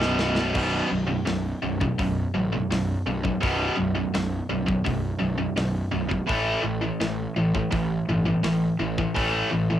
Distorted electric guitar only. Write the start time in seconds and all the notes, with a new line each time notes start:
Already playing: B1 F#2 B2
0.54 B1 F#2 B2
0.89 B1 F#2
1.07 B1 F#2
1.26 B1 F#2
1.62 B1 F#2
1.80 B1 F#2
1.98 B1 F#2
2.34 B1 F#2
2.52 B1 F#2
2.71 B1 F#2
3.07 B1 F#2
3.24 B1 F#2
3.41 B1 F#2 B2
3.76 B1 F#2
3.95 B1 F#2
4.14 B1 F#2
4.49 B1 F#2
4.66 B1 F#2
4.84 B1 F#2
5.19 B1 F#2
5.38 B1 F#2
5.56 B1 F#2
5.92 B1 F#2
6.09 B1 F#2
6.27 A2 E3 A3
6.62 A2 E3
6.81 A2 E3
7.00 A2 E3
7.36 A2 E3
7.55 A2 E3
7.71 A2 E3
8.09 A2 E3
8.25 A2 E3
8.43 A2 E3
8.79 A2 E3
8.98 A2 E3
9.15 A2 E3 A3
9.51 A2 E3
9.70 A2 E3